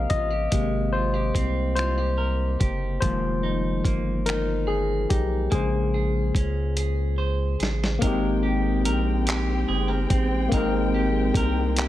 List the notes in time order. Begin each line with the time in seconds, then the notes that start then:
Already playing: C3 G#3 A#3 C4 G4 A#4 C5 D#5 F5
0.10 A1 F4 D#5, kick, closed hi-hat
0.30 G4
0.51 G#1 C3 G#3 A#3 G4, kick, closed hi-hat
0.93 F4 C5
1.14 G4
1.34 C2 C4, kick, closed hi-hat
1.75 F4 C5, finger snap, closed hi-hat
1.98 G4
2.18 A#4
2.60 F#1 G4, kick, closed hi-hat
3.00 F1 D#3 F3 G#3 A#3 C5, kick, closed hi-hat
3.43 D#4
3.85 G1 A#3, kick, closed hi-hat
4.26 D#4 A#4, finger snap, closed hi-hat
4.67 G#4
5.10 B1 D#4 G4, kick, closed hi-hat
5.51 A#1 C#3 G#3 A#3 G#4 C5, kick, closed hi-hat
5.94 G#4
6.35 C#2 C#4, kick, closed hi-hat
6.77 G#4, closed hi-hat
7.18 C5
7.60 A1 G#4, snare, closed hi-hat
7.84 snare
7.99 G#1 G#3 A#3 C4 A#4 G5, kick, closed hi-hat
8.04 D#4 G4
8.43 G4
8.85 A#1 A#4, closed hi-hat
9.27 G4, clap, closed hi-hat
9.68 G1 G#4
9.88 A#4
10.10 A1 C4, kick, closed hi-hat
10.49 A#3 C4, kick, closed hi-hat
10.53 G#1 G#3 D#4 A#4
10.57 A#4
10.94 G4
11.34 C2 A#4, kick, closed hi-hat
11.77 G4, clap, closed hi-hat